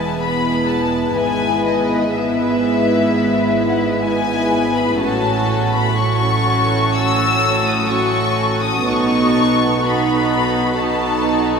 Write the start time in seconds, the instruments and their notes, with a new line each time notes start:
Already playing: double bass section E1, cello section E2, viola section G#3 B3, violin section E4 B4 A5
0.19 viola section G#3 B3, violin section E4 B4 B5
0.68 violin section A5
1.15 double bass section G#1, cello section G#2, viola section G#3 B3, violin section E4 B4 G#5
1.65 violin section D#5
2.12 viola section G#3 B3, violin section E4 B4 E5
3.68 violin section F#5
3.77 violin section E5
3.86 violin section D#5
3.93 violin section E5
4.03 viola section G#3 B3, violin section E4 B4 G#5
4.76 violin section B5
4.99 double bass section A1, cello section A2, viola section F#3 C#4, violin section F#4 A4 A5
5.73 violin section B5
5.96 viola section F#3 C#4, violin section F#4 A4 C#6
6.94 violin section E6
7.66 violin section D#6
7.88 viola section F#3 C#4, violin section F#4 A4 C#6
8.62 violin section D#6
8.85 double bass section B1, cello section B2, viola section B3 D#4, violin section F#4 A4 C#6
9.81 viola section B3 D#4, violin section F#4 A4 B5
10.77 viola section B3 D#4, violin section F#4 A4 A5